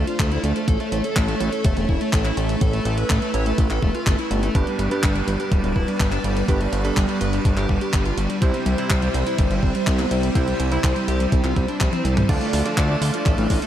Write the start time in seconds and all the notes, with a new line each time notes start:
Already playing: A3 D4 F4 C5 F5
0.07 F4, closed hi-hat
0.19 D2 A3, kick, clap, closed hi-hat
0.32 E4, closed hi-hat
0.44 D2 A3, closed hi-hat
0.56 A3, closed hi-hat
0.68 A1 C#4 E4 A4 C#5 E5, kick, closed hi-hat
0.80 A3, closed hi-hat
0.92 A1 A3, closed hi-hat
1.04 A4, closed hi-hat
1.16 A1 A3, kick, clap, closed hi-hat
1.28 A3, closed hi-hat
1.40 A1 A3, closed hi-hat
1.53 A4, closed hi-hat
1.64 E1 A3, kick, closed hi-hat
1.77 E1 A3, closed hi-hat
1.89 E1 E4, kick
2.01 A3, closed hi-hat
2.13 A1 A3, kick, clap, closed hi-hat
2.25 E4, clap, closed hi-hat
2.37 A1 A3, closed hi-hat
2.49 A3, closed hi-hat
2.61 A1 A4 B4, kick, closed hi-hat
2.73 A3, closed hi-hat
2.85 A1 A3, closed hi-hat
2.98 B4, closed hi-hat
3.10 A1 A3, kick, clap, closed hi-hat
3.22 A3, closed hi-hat
3.34 A1 C#5, closed hi-hat
3.46 A3, closed hi-hat
3.58 A1 A3, kick, closed hi-hat
3.70 A1 A4, clap, closed hi-hat
3.83 E1 A3, kick
3.95 F4, closed hi-hat
4.07 G1 A3, kick, clap, closed hi-hat
4.19 E4, closed hi-hat
4.31 G1 A3, closed hi-hat
4.43 A3, closed hi-hat
4.55 G1 G2 G3 B3 D4 G4 B4 D5, kick, closed hi-hat
4.67 G3, closed hi-hat
4.79 G1 G3, closed hi-hat
4.91 G2 G3 B3 D4 G4 B4, closed hi-hat
5.03 G1 G3, kick, clap, closed hi-hat
5.15 G3, closed hi-hat
5.27 G1 G3, closed hi-hat
5.40 G4, closed hi-hat
5.52 D1 G3, kick, closed hi-hat
5.64 D1 G3, closed hi-hat
5.76 D1 E4, kick
5.88 G3, closed hi-hat
6.00 G1 G3, kick, clap, closed hi-hat
6.12 D4, clap, closed hi-hat
6.24 G1 G3, closed hi-hat
6.36 G3, closed hi-hat
6.48 G1 G2 G3 B3 D4 G4 B4, kick, closed hi-hat
6.61 G3, closed hi-hat
6.73 G1 G3, closed hi-hat
6.85 G2 G3 B3 D4 A4 B4, closed hi-hat
6.97 G1 G3, kick, clap, closed hi-hat
7.09 G3, closed hi-hat
7.21 G1 B4, closed hi-hat
7.33 G3, closed hi-hat
7.45 G1 G3, kick, closed hi-hat
7.57 G1 G4, clap, closed hi-hat
7.69 G1 G3, kick
7.81 G4, closed hi-hat
7.93 G1 G3, kick, clap, closed hi-hat
8.06 F4, closed hi-hat
8.18 G1 G3, closed hi-hat
8.30 G3, closed hi-hat
8.42 C2 C3 G3 C4 E4 C5 E5, kick, closed hi-hat
8.54 G3, closed hi-hat
8.66 C2 G3, closed hi-hat
8.78 C3 G3 C4 E4 C5, closed hi-hat
8.90 C2 G3, kick, clap, closed hi-hat
9.02 G3, closed hi-hat
9.14 C2 G3, closed hi-hat
9.27 E4, closed hi-hat
9.38 G1 G3, kick, closed hi-hat
9.51 G1 G3, closed hi-hat
9.63 G1 C4, kick
9.75 G3, closed hi-hat
9.87 C2 G3, kick, clap, closed hi-hat
9.99 B3, clap, closed hi-hat
10.11 C2 G3, closed hi-hat
10.23 G3, closed hi-hat
10.35 C2 C3 G3 C4 E4 C5, kick, closed hi-hat
10.48 G3, closed hi-hat
10.60 C2 G3, closed hi-hat
10.72 C3 G3 C4 E4 C5, closed hi-hat
10.84 C2 G3, kick, clap, closed hi-hat
10.96 G3, closed hi-hat
11.08 C2 G4, closed hi-hat
11.20 G3, closed hi-hat
11.32 C2 G3, kick, closed hi-hat
11.44 C2 F4, clap, closed hi-hat
11.56 C2 G3, kick, closed hi-hat
11.68 D4, closed hi-hat
11.80 C2 G3, kick, clap, closed hi-hat, high tom
11.93 C4, closed hi-hat, high tom
12.05 C2 G3, closed hi-hat
12.17 G3, closed hi-hat, mid tom
12.29 D2 D3 F3 A3 D4 F4 D5 F5, kick, closed hi-hat, crash
12.41 A3, closed hi-hat
12.53 D2 A3, open hi-hat
12.65 D3 F3 A3 D4 F4 D5, closed hi-hat
12.77 D2 A3, kick, clap, closed hi-hat
12.90 A3
13.02 D2 A3, open hi-hat
13.14 F3 F4, closed hi-hat
13.26 A1 A3, kick, clap, closed hi-hat
13.38 A1 A3, closed hi-hat
13.50 A1 D3 D4, kick, open hi-hat
13.62 A3, closed hi-hat